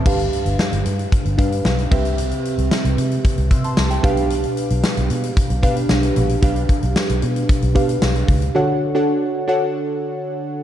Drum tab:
CC |x-------------x-|----------------|----------------|----------------|
HH |-xxx-xxxxxxx-x-x|xxxx-xxxxxxx-xxx|xxxx-xxxxxxx-xxx|xxxx-xxxxxxx-xox|
TB |----------------|----x-------x---|----x-------x---|----x-------x---|
SD |----o-------o---|----o-------o---|----o-------o---|----o-------o---|
BD |o-------o-o---o-|--------o-o---o-|--------o-o-----|o-o-----o-o---o-|

CC |----------------|
HH |----------------|
TB |----------------|
SD |----------------|
BD |----------------|